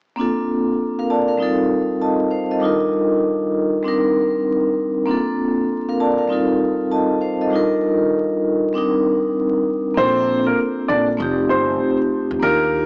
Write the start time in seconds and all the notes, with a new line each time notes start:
0.16 A#3 C4 D4 F4
0.21 A4
0.99 A#4 F5
1.10 D5 A5
1.28 A#4 F5
1.38 G3 C4 D#4 F4
1.43 A4
2.01 D#5 A5
2.31 C5 F5
2.51 A4 D#5
2.60 G3 D4 D#4 F4
2.65 A#4
3.83 G3 C4 D4 D#4
3.88 A#4
5.06 A#3 C4 D4 F4
5.11 A4
5.89 A#4 F5
6.00 D5 A5
6.18 A#4 F5
6.28 G3 C4 D#4 F4
6.33 A4
6.92 D#5 A5
7.21 C5 F5
7.41 A4 D#5
7.50 G3 D4 D#4 F4
7.56 A#4
8.73 G3 C4 D4 D#4
8.78 A#4
9.95 A#1 A#3 C4 D4 F4 C5
10.00 A4
10.47 A#3 A#4
10.88 A#1 D4 D5
11.17 F1 A3 C4 D#4 F4
11.22 G4
11.49 G1 C4 C5
12.31 E2
12.40 D#2 A#3 D4 D#4 F4 A#4
12.45 G4